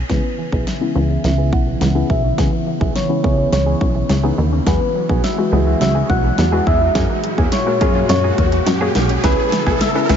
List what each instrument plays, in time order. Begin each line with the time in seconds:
0.09 analog synth bass C#2, analog synth pad C#3 E3 B3, synth arpeggio sound E3, synth pluck B3 C#4 E4, clean electric guitar B3 E4 G#4, soft synth lead B4, kick, snare, riser
0.24 synth arpeggio sound B3, muted clean electric guitar stroke
0.38 synth arpeggio sound E3, muted clean electric guitar stroke
0.52 analog synth bass B1, clean electric guitar B3 E4 G#4, kick
0.67 soft synth lead E5, muted clean electric guitar stroke, snare
0.81 synth arpeggio sound G#3, synth pluck B3 C#4 E4, muted clean electric guitar stroke
0.95 analog synth bass C#2, synth arpeggio sound E3, clean electric guitar B3 E4 G#4, synth pluck B3 C#4 E4
1.09 clean electric guitar B3 E4 G#4, synth arpeggio sound C#4
1.24 analog synth bass C#2, synth arpeggio sound E3, soft synth lead E5, snare
1.38 synth arpeggio sound B3, clean electric guitar B3 E4 G#4
1.52 analog synth bass B1, synth arpeggio sound E3, synth pluck B3 C#4 E4, soft synth lead F#5, muted clean electric guitar stroke, kick
1.67 synth arpeggio sound E3, muted clean electric guitar stroke
1.81 analog synth bass C#2, synth arpeggio sound E3, muted clean electric guitar stroke, snare
1.95 synth pluck B3 C#4 E4, clean electric guitar B3 E4 G#4
2.09 analog synth bass B1, clean electric guitar B3 E4 G#4, synth arpeggio sound B3, soft synth lead E5, kick
2.24 synth arpeggio sound C#4, muted clean electric guitar stroke
2.38 analog synth bass C#2, synth arpeggio sound E3, clean electric guitar B3 E4 G#4, synth pluck B3 C#4 E4, kick, snare
2.52 synth arpeggio sound B3, muted clean electric guitar stroke
2.66 synth arpeggio sound E3, muted clean electric guitar stroke
2.81 analog synth bass B1, clean electric guitar B3 E4 G#4, kick
2.95 soft synth lead C#5, muted clean electric guitar stroke, snare
3.09 synth arpeggio sound G#3, synth pluck B3 C#4 E4, muted clean electric guitar stroke
3.23 analog synth bass C#2, synth arpeggio sound E3, synth pluck B3 C#4 E4, clean electric guitar B3 E4 G#4, kick
3.38 clean electric guitar B3 E4 G#4, synth arpeggio sound C#4
3.52 analog synth bass C#2, synth arpeggio sound E3, soft synth lead C#5, snare
3.66 synth arpeggio sound B3, clean electric guitar B3 E4 G#4
3.80 analog synth bass B1, synth arpeggio sound E3, synth pluck B3 C#4 E4, muted clean electric guitar stroke, kick
3.95 synth arpeggio sound E3, muted clean electric guitar stroke
4.09 analog synth bass C#2, synth arpeggio sound E3, muted clean electric guitar stroke, snare
4.23 synth pluck B3 C#4 D#4, clean electric guitar B3 E4 G#4
4.38 analog synth bass D#2, synth arpeggio sound B3, muted clean electric guitar stroke
4.52 synth arpeggio sound C#4, muted clean electric guitar stroke
4.67 analog synth bass E2, analog synth pad E3 G#3 F#4, synth arpeggio sound F#3, synth pluck G#3 E4 F#4, clean electric guitar B3 F#4 G#4, soft synth lead B4, kick, snare
4.81 synth arpeggio sound B3, muted clean electric guitar stroke
4.95 synth arpeggio sound F#3, muted clean electric guitar stroke
5.09 analog synth bass B1, clean electric guitar B3 F#4 G#4, kick
5.24 soft synth lead E5, snare
5.38 synth arpeggio sound G#3, synth pluck G#3 E4 F#4, muted clean electric guitar stroke
5.52 analog synth bass C#2, synth arpeggio sound F#3, synth pluck G#3 E4 G#4, clean electric guitar B3 F#4 G#4
5.67 clean electric guitar B3 F#4 G#4, synth arpeggio sound E4
5.81 analog synth bass C#2, synth arpeggio sound F#3, soft synth lead E5, snare
5.95 synth arpeggio sound B3, clean electric guitar B3 F#4 G#4
6.09 analog synth bass B1, synth arpeggio sound F#3, synth pluck G#3 E4 F#4, soft synth lead F#5, muted clean electric guitar stroke, kick
6.24 synth arpeggio sound F#3, muted clean electric guitar stroke
6.38 analog synth bass E2, synth arpeggio sound F#3, muted clean electric guitar stroke, snare
6.52 synth pluck G#3 E4 F#4, clean electric guitar B3 F#4 G#4
6.66 analog synth bass E2, clean electric guitar B3 F#4 G#4, synth arpeggio sound B3, soft synth lead E5, kick
6.81 synth arpeggio sound E4
6.95 analog synth bass F#2, analog synth pad A#2 F#4, synth arpeggio sound F#3, clean electric guitar A#3 C#4 G#4, synth pluck A#3 F#4 G#4, kick, snare, closed hi-hat
7.09 synth arpeggio sound A#3, muted clean electric guitar stroke
7.24 synth arpeggio sound F#3, muted clean electric guitar stroke, closed hi-hat
7.38 analog synth bass E2, clean electric guitar A#3 C#4 G#4, kick
7.52 soft synth lead C#5, muted clean electric guitar stroke, snare, closed hi-hat
7.66 synth arpeggio sound G#3, synth pluck A#3 F#4 A#4, muted clean electric guitar stroke
7.81 analog synth bass F#2, synth arpeggio sound F#3, synth pluck A#3 F#4 G#4, clean electric guitar A#3 C#4 G#4, kick, closed hi-hat
7.95 clean electric guitar A#3 C#4 G#4, synth arpeggio sound C#4
8.09 analog synth bass F#2, synth arpeggio sound F#3, soft synth lead C#5, snare, closed hi-hat
8.24 synth arpeggio sound A#3, clean electric guitar A#3 C#4 G#4
8.38 analog synth bass E2, synth arpeggio sound F#3, synth pluck A#3 F#4 A#4, muted clean electric guitar stroke, kick, closed hi-hat
8.52 synth arpeggio sound F#3, muted clean electric guitar stroke, closed hi-hat
8.66 analog synth bass F#2, synth arpeggio sound F#3, muted clean electric guitar stroke, snare, closed hi-hat
8.81 synth pluck A#3 F#4 G#4, clean electric guitar A#3 C#4 G#4
8.95 analog synth bass B1, clean electric guitar A#3 C#4 G#4, synth arpeggio sound A#3, snare, closed hi-hat
9.09 synth arpeggio sound C#4, muted clean electric guitar stroke, closed hi-hat
9.24 analog synth bass C#2, analog synth pad C#3 B3 E4, synth arpeggio sound E3, clean electric guitar B3 E4 G#4, synth pluck C#4 E4 B4, soft synth lead B4, kick, snare, closed hi-hat
9.38 synth arpeggio sound B3, muted clean electric guitar stroke
9.52 synth arpeggio sound E3, muted clean electric guitar stroke, snare, closed hi-hat
9.66 analog synth bass B1, clean electric guitar B3 E4 G#4, kick
9.81 soft synth lead E5, snare, closed hi-hat
9.95 synth arpeggio sound G#3, synth pluck C#4 E4 B4, muted clean electric guitar stroke
10.09 analog synth bass C#2, synth arpeggio sound E3, clean electric guitar B3 E4 G#4, synth pluck C#4 E4 B4, snare, closed hi-hat